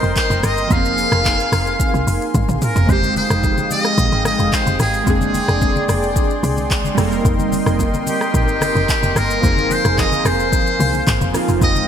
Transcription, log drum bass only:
0.03 F1
0.30 F1
0.43 G1
0.71 F1
1.12 F1
1.52 F1
1.94 C2
2.07 F1
2.35 G#1
2.49 A#1
2.76 F1
2.89 F1
3.30 F1
3.98 A#1
4.12 G#1
4.40 F1
4.67 F1
4.80 G#1
5.07 F1
5.48 F1
5.89 F1
6.43 C2
6.98 F1
7.25 F1
7.66 F1
8.34 A#1
8.48 G1
8.75 F1
9.03 F1
9.16 G1
9.43 F1
9.85 F1
10.25 F1
10.80 C2
11.07 G#1
11.21 F1
11.49 F1
11.62 F1

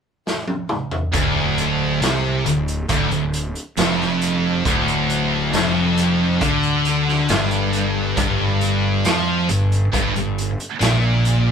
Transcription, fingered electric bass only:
1.14 D1
2.01 C2
2.45 D1
2.89 D1
3.11 D1
3.78 F1
4.66 D1
5.53 F1
6.41 D2
7.29 G1
8.17 G1
9.06 F2
9.49 G1
9.93 G1
10.16 G1
10.81 A#1

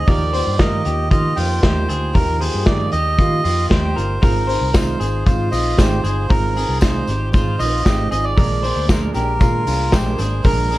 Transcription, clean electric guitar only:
0.08 A#4
0.33 C5
0.60 A#4
0.86 G4
1.11 F4
1.37 F4
1.64 G4
1.89 G#4
2.15 A#4
2.41 G#4
2.92 G4
3.19 F4
3.44 F4
3.70 G4
3.96 A#4
4.22 A#4
4.47 C5
4.74 A#4
5.00 G#4
5.26 F4
5.52 F4
5.78 G4
6.04 G#4
6.30 A#4
6.57 G#4
7.08 G4
7.33 F4
7.59 F4
7.85 G4
8.11 G#4
8.37 A#4
8.63 C5
8.89 A#4
9.14 G4
9.40 F4
9.67 F4
9.93 G4
10.19 G#4
10.45 A#4
10.71 G#4

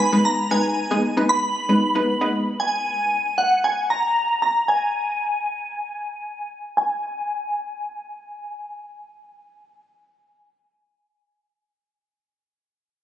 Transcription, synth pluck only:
0.13 G#3 B3 D#4 B4
0.51 G#3 B3 D#4 B4
0.91 G#3 B3 D#4 G#4
1.17 G#3 B3 D#4 B4
1.69 G#3 B3 D#4 B4
1.95 G#3 B3 D#4 B4
2.21 G#3 B3 D#4 B4

